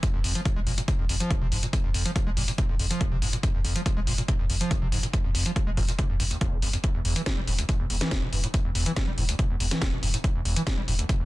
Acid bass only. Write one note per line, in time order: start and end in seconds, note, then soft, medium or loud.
0.03 0.09 F2 medium
0.14 0.20 F2 loud
0.24 0.33 F2 loud
0.35 0.41 F3 loud
0.45 0.49 C3 medium
0.56 0.60 G#3 loud
0.67 0.73 A#2 medium
0.78 0.81 A#2 medium
0.88 0.94 C3 medium
0.99 1.05 F2 loud
1.09 1.15 F2 medium
1.20 1.32 F3 loud
1.30 1.34 D#3 medium
1.42 1.47 C3 loud
1.52 1.58 G#2 medium
1.63 1.66 A#2 medium
1.73 1.79 F2 medium
1.84 1.90 F2 loud
1.94 2.03 F2 loud
2.05 2.11 F3 loud
2.16 2.19 C3 medium
2.27 2.30 G#3 medium
2.37 2.43 A#2 medium
2.48 2.51 A#2 medium
2.58 2.64 C3 medium
2.69 2.75 F2 loud
2.80 2.86 F2 medium
2.91 3.02 F3 loud
3.01 3.04 D#3 medium
3.12 3.17 C3 loud
3.22 3.28 G#2 medium
3.33 3.36 A#2 medium
3.43 3.49 F2 medium
3.54 3.60 F2 loud
3.64 3.74 F2 loud
3.76 3.81 F3 loud
3.86 3.89 C3 medium
3.97 4.00 G#3 medium
4.07 4.13 A#2 medium
4.18 4.22 A#2 medium
4.28 4.34 C3 medium
4.39 4.45 F2 loud
4.50 4.56 F2 medium
4.61 4.72 F3 loud
4.71 4.75 D#3 medium
4.82 4.88 C3 loud
4.92 4.98 G#2 medium
5.03 5.07 A#2 medium
5.13 5.19 F2 medium
5.24 5.30 F2 loud
5.35 5.44 F2 loud
5.46 5.51 F3 loud
5.56 5.60 C3 medium
5.67 5.70 G#3 loud
5.77 5.83 A#2 medium
5.88 5.92 A#2 medium
5.98 6.05 C3 medium
6.10 6.15 F2 loud
6.20 6.23 G2 loud
6.31 6.37 D#2 medium
6.41 6.54 D#2 medium
6.52 6.58 F2 medium
6.62 6.69 F2 medium
6.73 6.77 F2 loud
6.84 6.90 E2 medium
6.95 7.00 E2 loud
7.05 7.14 E2 loud
7.16 7.22 E3 loud
7.26 7.30 B2 medium
7.37 7.41 G3 medium
7.47 7.54 A2 medium
7.59 7.64 D2 loud
7.69 7.75 B2 medium
7.80 7.86 E2 loud
7.90 7.96 E2 medium
8.01 8.13 E3 loud
8.11 8.15 D3 medium
8.22 8.28 B2 loud
8.33 8.39 G2 medium
8.44 8.47 A2 medium
8.54 8.60 E2 medium
8.65 8.71 E2 loud
8.75 8.84 E2 loud
8.86 8.92 E3 loud
8.96 9.00 B2 medium
9.07 9.11 G3 loud
9.18 9.24 A2 medium
9.29 9.34 D2 loud
9.39 9.45 B2 medium
9.50 9.56 E2 loud
9.60 9.66 E2 medium
9.71 9.83 E3 loud
9.81 9.85 D3 medium
9.93 9.98 B2 loud
10.03 10.09 G2 medium
10.14 10.17 A2 medium
10.24 10.30 E2 medium
10.35 10.41 E2 loud
10.45 10.55 E2 loud
10.56 10.62 E3 loud
10.67 10.70 B2 medium
10.78 10.81 G3 loud
10.88 10.94 A2 medium
10.99 11.05 D2 loud
11.09 11.15 B2 medium
11.20 11.25 E2 loud